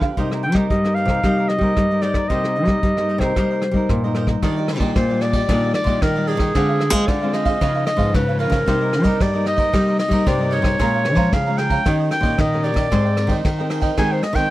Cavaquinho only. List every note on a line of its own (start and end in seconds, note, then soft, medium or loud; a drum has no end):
0.02 0.16 G4 soft
0.02 0.16 B4 soft
0.02 0.15 F5 soft
0.17 0.30 D#4 medium
0.17 0.30 A#4 medium
0.17 0.30 C5 medium
0.17 0.30 D#5 medium
0.31 0.42 A#4 soft
0.31 0.42 C5 soft
0.31 0.43 D#5 soft
0.43 muted cavaquinho stroke soft
0.55 0.83 A#4 medium
0.55 0.82 C5 medium
0.55 0.82 D#5 medium
0.84 0.95 A#4 soft
0.84 0.96 C5 soft
0.84 0.96 D#5 soft
0.96 1.09 D#4 soft
0.96 1.09 A#4 soft
0.96 1.08 C5 medium
0.96 1.06 D#5 soft
1.08 1.23 A#4 medium
1.08 1.22 C5 medium
1.08 1.21 D#5 medium
1.23 1.36 D#4 medium
1.23 1.36 A#4 medium
1.23 1.37 C5 medium
1.23 1.36 D#5 medium
1.37 1.48 A#4 soft
1.37 1.49 C5 soft
1.37 1.49 D#5 soft
1.49 muted cavaquinho stroke soft
1.61 1.89 A#4 medium
1.61 1.89 C5 medium
1.61 1.88 D#5 medium
1.91 2.01 A#4 soft
1.91 2.02 C5 soft
1.91 2.03 D#5 soft
2.02 2.15 D#4 medium
2.02 2.15 A#4 medium
2.02 2.14 C5 medium
2.02 2.13 D#5 medium
2.14 2.29 A#4 soft
2.14 2.28 C5 soft
2.14 2.28 D#5 soft
2.29 2.42 D#4 medium
2.29 2.43 A#4 medium
2.29 2.43 C5 medium
2.29 2.43 D#5 medium
2.44 2.55 A#4 soft
2.44 2.55 C5 soft
2.44 2.55 D#5 soft
2.56 muted cavaquinho stroke soft
2.67 2.96 A#4 soft
2.67 2.95 C5 medium
2.67 2.94 D#5 medium
2.98 3.08 A#4 soft
2.98 3.09 C5 soft
2.98 3.10 D#5 soft
3.09 3.22 D#4 soft
3.09 3.22 A#4 medium
3.09 3.21 C5 medium
3.09 3.19 D#5 soft
3.21 3.36 A#4 medium
3.21 3.35 C5 medium
3.21 3.34 D#5 medium
3.36 3.49 D#4 medium
3.36 3.49 A#4 medium
3.36 3.50 C5 medium
3.36 3.49 D#5 medium
3.51 3.61 A#4 soft
3.51 3.62 C5 soft
3.51 3.62 D#5 soft
3.62 muted cavaquinho stroke soft
3.74 4.02 A#4 soft
3.74 4.02 C5 medium
3.74 4.01 D#5 medium
4.04 4.14 A#4 soft
4.04 4.15 C5 soft
4.04 4.16 D#5 soft
4.15 4.28 D#4 medium
4.15 4.28 A#4 medium
4.15 4.27 C5 medium
4.15 4.25 D#5 medium
4.27 4.42 A#4 soft
4.27 4.41 C5 soft
4.27 4.41 D#5 soft
4.42 4.55 D4 medium
4.42 4.55 G4 medium
4.42 4.55 D5 medium
4.42 4.56 D#5 medium
4.56 4.68 G4 soft
4.56 4.68 D5 medium
4.56 4.68 D#5 medium
4.68 muted cavaquinho stroke soft
4.80 5.08 G4 medium
4.80 5.07 D5 medium
4.80 5.08 D#5 medium
5.09 5.21 G4 soft
5.09 5.22 D5 soft
5.09 5.21 D#5 soft
5.21 5.34 D4 soft
5.21 5.34 G4 medium
5.21 5.32 D5 medium
5.21 5.33 D#5 medium
5.33 5.48 G4 medium
5.33 5.47 D5 medium
5.33 5.48 D#5 medium
5.49 5.62 D4 medium
5.49 5.62 G4 medium
5.49 5.62 D5 medium
5.49 5.62 D#5 medium
5.63 5.74 G4 soft
5.63 5.74 D5 soft
5.63 5.74 D#5 soft
5.74 muted cavaquinho stroke soft
5.86 6.14 G4 medium
5.86 6.13 D5 medium
5.86 6.14 D#5 medium
6.15 6.27 G4 soft
6.15 6.28 D5 medium
6.15 6.27 D#5 soft
6.27 6.40 D4 medium
6.27 6.40 G4 medium
6.27 6.38 D5 medium
6.27 6.39 D#5 medium
6.39 6.54 G4 soft
6.39 6.53 D5 medium
6.55 6.68 D4 medium
6.55 6.68 G#4 medium
6.55 6.68 C5 medium
6.55 6.68 F5 medium
6.69 6.79 G#4 soft
6.69 6.80 C5 soft
6.69 6.80 F5 medium
6.80 muted cavaquinho stroke soft
6.92 7.20 G#4 medium
6.92 7.20 C5 medium
6.92 7.19 F5 medium
7.22 7.33 G#4 soft
7.22 7.33 C5 soft
7.22 7.34 F5 soft
7.33 7.46 D4 soft
7.33 7.46 G#4 medium
7.33 7.45 C5 medium
7.33 7.44 F5 medium
7.45 7.60 G#4 medium
7.45 7.60 C5 medium
7.45 7.59 F5 medium
7.61 7.74 F4 medium
7.61 7.74 B4 medium
7.61 7.74 C#5 medium
7.61 7.74 F5 medium
7.75 7.86 B4 soft
7.75 7.86 C#5 soft
7.75 7.86 F5 medium
7.86 muted cavaquinho stroke soft
7.98 8.27 B4 medium
7.98 8.26 C#5 medium
7.98 8.25 F5 medium
8.28 8.38 B4 soft
8.28 8.39 C#5 soft
8.28 8.40 F5 medium
8.39 8.52 F4 medium
8.39 8.53 B4 medium
8.39 8.51 C#5 medium
8.39 8.50 F5 medium
8.51 8.66 B4 soft
8.51 8.66 C#5 soft
8.51 8.65 F5 soft
8.66 8.79 D#4 medium
8.66 8.80 A#4 medium
8.66 8.80 C5 medium
8.66 8.80 D#5 medium
8.81 8.91 A#4 soft
8.81 8.92 C5 soft
8.81 8.92 D#5 medium
8.92 muted cavaquinho stroke soft
9.04 9.33 A#4 medium
9.04 9.32 C5 medium
9.04 9.31 D#5 medium
9.33 9.45 A#4 soft
9.33 9.46 C5 soft
9.33 9.46 D#5 medium
9.46 9.59 D#4 medium
9.46 9.58 A#4 medium
9.46 9.57 C5 medium
9.46 9.56 D#5 medium
9.57 9.72 A#4 medium
9.57 9.72 C5 medium
9.57 9.71 D#5 medium
9.73 9.86 D#4 medium
9.73 9.86 A#4 medium
9.73 9.86 C5 medium
9.73 9.86 D#5 medium
9.87 9.98 A#4 soft
9.87 9.98 C5 soft
9.87 9.99 D#5 medium
9.98 muted cavaquinho stroke soft
10.11 10.39 A#4 medium
10.11 10.38 C5 medium
10.11 10.38 D#5 medium
10.40 10.50 A#4 soft
10.40 10.51 C5 soft
10.40 10.52 D#5 soft
10.51 10.64 D#4 medium
10.51 10.65 A#4 medium
10.51 10.64 C5 medium
10.51 10.63 D#5 medium
10.64 10.79 A#4 soft
10.64 10.78 C5 soft
10.64 10.78 D#5 soft
10.79 10.92 G#4 medium
10.79 10.92 C#5 medium
10.79 10.93 F5 medium
10.79 10.92 A#5 medium
10.93 11.04 C#5 soft
10.93 11.04 F5 soft
10.93 11.04 A#5 medium
11.04 muted cavaquinho stroke soft
11.17 11.45 C#5 medium
11.17 11.44 F5 medium
11.17 11.44 A#5 medium
11.46 11.57 C#5 soft
11.46 11.58 F5 soft
11.46 11.58 A#5 soft
11.57 11.71 G#4 medium
11.57 11.71 C#5 medium
11.57 11.70 F5 medium
11.57 11.69 A#5 medium
11.70 11.85 C#5 medium
11.70 11.84 F5 medium
11.70 11.84 A#5 medium
11.85 11.98 D#4 medium
11.85 11.98 G4 medium
11.85 11.99 C#5 medium
11.85 11.98 D#5 medium
12.00 12.10 G4 soft
12.00 12.10 C#5 soft
12.00 12.11 D#5 soft
12.11 muted cavaquinho stroke soft
12.23 12.51 G4 medium
12.23 12.51 C#5 medium
12.23 12.50 D#5 medium
12.52 12.63 G4 soft
12.52 12.64 C#5 soft
12.52 12.65 D#5 soft
12.63 12.77 D#4 medium
12.63 12.76 G4 medium
12.63 12.75 C#5 medium
12.63 12.74 D#5 medium
12.75 12.90 G4 soft
12.75 12.90 C#5 soft
12.75 12.89 D#5 soft
12.91 13.04 G#4 medium
12.91 13.04 C5 medium
12.91 13.05 D#5 medium
12.91 13.04 G5 medium
13.05 13.16 C5 soft
13.05 13.16 D#5 soft
13.05 13.17 G5 soft
13.16 muted cavaquinho stroke soft
13.29 13.57 C5 medium
13.29 13.57 D#5 medium
13.29 13.56 G5 medium
13.59 13.69 C5 soft
13.59 13.70 D#5 medium
13.59 13.70 G5 medium
13.70 13.83 G#4 medium
13.70 13.83 C5 medium
13.70 13.82 D#5 medium
13.70 13.80 G5 medium
13.81 13.97 C5 soft
13.81 13.96 D#5 medium
13.81 13.95 G5 medium
13.97 14.10 G#4 medium
13.97 14.10 C5 medium
13.97 14.11 D#5 medium
13.97 14.10 G5 medium
14.11 14.22 C5 soft
14.11 14.23 D#5 soft
14.11 14.23 G5 soft
14.23 muted cavaquinho stroke soft
14.35 14.50 C5 medium
14.35 14.50 D#5 medium
14.35 14.50 G5 medium